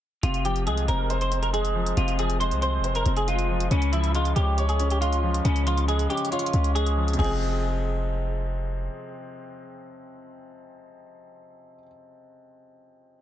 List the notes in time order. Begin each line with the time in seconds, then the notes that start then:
0.23 F1 C3 F4, closed hi-hat
0.34 closed hi-hat
0.45 F3 G4, closed hi-hat
0.56 closed hi-hat
0.67 C2 G#3 G#4, closed hi-hat
0.77 closed hi-hat
0.88 F1 C4 A#4, closed hi-hat
1.10 C5, closed hi-hat
1.21 C5, closed hi-hat
1.32 C4, closed hi-hat
1.43 A#4, closed hi-hat
1.53 G#3 G#4, closed hi-hat
1.65 closed hi-hat
1.75 F3
1.86 closed hi-hat
1.97 F1 C3 F4, closed hi-hat
2.08 closed hi-hat
2.19 F3 G#4, closed hi-hat
2.30 closed hi-hat
2.40 G#3 C5, closed hi-hat
2.51 C2, closed hi-hat
2.62 C4 C5, closed hi-hat
2.79 F1
2.84 C5, closed hi-hat
2.95 A#4, closed hi-hat
3.06 F1 C4, closed hi-hat
3.17 G#4, closed hi-hat
3.28 G#3 F4, closed hi-hat
3.39 closed hi-hat
3.49 F3
3.60 closed hi-hat
3.71 C#2 C#3 C#4, closed hi-hat
3.82 closed hi-hat
3.92 F3 E4, closed hi-hat
4.04 closed hi-hat
4.14 G#3 F4, closed hi-hat
4.25 closed hi-hat
4.36 C#2 C#4 G4, closed hi-hat
4.58 C#5, closed hi-hat
4.69 G#4, closed hi-hat
4.80 C#4, closed hi-hat
4.90 G4, closed hi-hat
5.01 G#3 F4, closed hi-hat
5.13 closed hi-hat
5.23 F3
5.34 closed hi-hat
5.45 C#2 C#3 C#4, closed hi-hat
5.56 closed hi-hat
5.67 F3 F4, closed hi-hat
5.77 closed hi-hat
5.88 G#3 G#4, closed hi-hat
5.99 closed hi-hat
6.10 C#4 G4, closed hi-hat
6.17 closed hi-hat
6.25 closed hi-hat
6.32 F4 C#5, closed hi-hat
6.39 closed hi-hat
6.46 closed hi-hat
6.53 C#2 C#4, closed hi-hat
6.64 closed hi-hat
6.75 G#3 G#4, closed hi-hat
6.86 closed hi-hat
6.97 F3
7.08 closed hi-hat
7.13 C3, closed hi-hat
7.17 F1 F3 G#3 G#4, kick, closed hi-hat, crash
7.24 C4, closed hi-hat